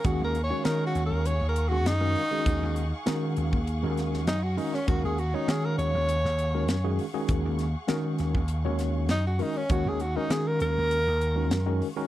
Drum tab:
HH |x-x-x-x-x-x-x-o-|x-x-x-x-x-x-x-o-|x-x-x-x-x-x-x-o-|x-x-x-x-x-x-x-o-|
SD |----o-------o---|----o-----ooo--o|----o----o--o---|--o-o-o---o-o---|
BD |o---------------|o------o--------|o---------------|o------o--------|

HH |x-x-x-x-x-x-x-o-|
SD |----o-------o---|
BD |o---------------|